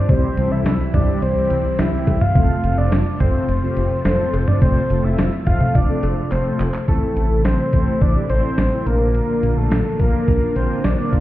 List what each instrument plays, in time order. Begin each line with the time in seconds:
Already playing: string machine C3, analog synth lead D5
0.09 analog synth bass C2, string machine E3 G3 E4, analog polysynth G3 C4 E4 G4, analog synth lead C5, kick, closed hi-hat
0.37 analog synth bass C2, analog polysynth G3 C4 E4 A4, closed hi-hat
0.51 analog synth bass C2, analog synth lead E5
0.66 analog synth bass C2, snare, closed hi-hat
0.94 analog synth bass C2, analog polysynth G3 C4 E4 G4, analog synth lead D5, kick, closed hi-hat, mid tom
1.22 analog synth bass C2, analog synth lead C5, closed hi-hat
1.36 analog polysynth G3 C4 E4 G4
1.50 analog synth bass C2, closed hi-hat
1.79 analog synth bass C2, analog polysynth G3 C4 E4 G4, analog synth lead E5, snare, closed hi-hat
2.07 analog synth bass C2, kick, closed hi-hat, cowbell
2.21 analog synth lead F5, mid tom
2.35 analog synth bass F1, string machine F3 A3 F4, analog polysynth A3 C4 F4 A4, kick, closed hi-hat
2.64 analog synth bass F1, analog polysynth A3 C4 F4 A4, closed hi-hat
2.78 analog synth bass F1, analog synth lead D5
2.92 analog synth bass F1, snare, closed hi-hat
3.20 analog synth bass F1, analog polysynth A3 C4 F4 C5, analog synth lead C5, kick, closed hi-hat, mid tom
3.49 analog synth bass F1, closed hi-hat
3.63 analog polysynth A3 C4 F4 G4
3.77 analog synth bass F1, closed hi-hat
4.05 analog synth bass F1, analog polysynth A3 C4 F4 A4, analog synth lead C5, snare, closed hi-hat
4.34 analog synth bass F1, closed hi-hat, cowbell
4.48 analog synth lead D5, mid tom
4.62 analog synth bass F1, analog polysynth A3 C4 F4 A4, analog synth lead C5, kick, closed hi-hat
4.90 analog synth bass F1, analog polysynth A3 C4 F4 A4, closed hi-hat
5.04 analog synth bass F1, analog synth lead E5
5.18 analog synth bass F1, snare, closed hi-hat
5.47 analog synth bass F1, analog polysynth A3 C4 F4 A4, analog synth lead F5, kick, closed hi-hat, mid tom
5.61 mid tom
5.75 analog synth bass F1, analog synth lead D5, kick, closed hi-hat
5.89 analog polysynth A3 C4 F4 A4
6.03 analog synth bass F1, closed hi-hat, cowbell
6.31 analog synth bass F1, analog polysynth A3 C4 F4 A4, analog synth lead C5, clap, closed hi-hat
6.60 analog synth bass F1, clap, closed hi-hat
6.74 clap
6.88 analog synth bass A1, string machine C3 E3 A3 E4, analog polysynth A3 C4 E4 A4, analog synth lead A4, kick, closed hi-hat
7.17 analog synth bass A1, closed hi-hat
7.31 analog synth bass A1
7.45 analog synth bass A1, analog synth lead C5, snare, closed hi-hat
7.73 analog synth bass A1, analog polysynth A3 C4 E4 A4, kick, closed hi-hat
8.01 analog synth bass A1, analog synth lead D5, kick, closed hi-hat
8.16 analog polysynth A3 C4 E4 G4
8.30 analog synth bass A1, analog polysynth A3 C4 E4 A4, analog synth lead C5, closed hi-hat
8.58 analog synth bass A1, snare, closed hi-hat
8.72 analog polysynth A3 C4 E4 A4
8.86 analog synth bass A#1, string machine D3 F3 A#3 F4, analog polysynth A#3 D4 F4 A#4, analog synth lead A#4, closed hi-hat
9.15 closed hi-hat
9.43 analog synth bass A#1, closed hi-hat
9.57 analog synth bass A#1, analog synth lead A4
9.71 analog synth bass A#1, snare, closed hi-hat
9.99 analog synth bass A#1, analog polysynth A#3 D4 F4 A#4, analog synth lead A#4, kick, closed hi-hat
10.28 analog synth bass A#1, kick, closed hi-hat
10.42 analog polysynth A#3 D4 F4 A#4
10.56 analog synth bass A#1, analog polysynth A#3 D4 F4 A#4, analog synth lead C5, closed hi-hat
10.84 analog synth bass A#1, analog synth lead D5, snare, closed hi-hat
10.98 analog polysynth A#3 D4 F4 A#4
11.13 analog synth bass A#1, kick, closed hi-hat